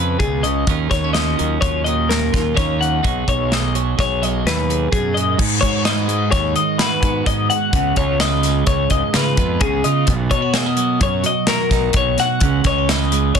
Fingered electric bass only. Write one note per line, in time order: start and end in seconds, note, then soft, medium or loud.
0.00 0.16 F2 loud
0.20 0.64 C#2 medium
0.68 0.89 D#2 loud
0.91 1.34 D#2 medium
1.40 1.61 D#2 medium
1.62 2.29 D#2 medium
2.34 2.55 D#2 medium
2.58 3.00 D#2 medium
3.05 3.25 B1 medium
3.28 3.94 B1 medium
3.99 4.42 B1 medium
4.45 4.88 D#2 medium
4.93 5.35 F#2 medium
5.40 5.60 G#2 medium
5.63 6.29 G#2 medium
6.33 6.54 D#2 medium
7.03 7.24 G#2 medium
7.27 7.48 G#2 medium
7.73 7.94 C#2 medium
7.97 8.63 C#2 medium
8.67 8.88 C#2 medium
8.91 9.01 C#2 medium
9.15 9.35 C#3 medium
9.38 9.59 F2 loud
9.61 9.82 C#2 medium
9.85 10.10 C#3 medium
10.08 10.29 B1 loud
10.32 10.97 B2 medium
11.01 11.22 F#2 medium
11.71 11.92 B1 medium
11.94 12.16 B1 medium
12.42 12.63 C#2 loud
12.65 13.31 C#2 medium
13.36 13.40 C#2 medium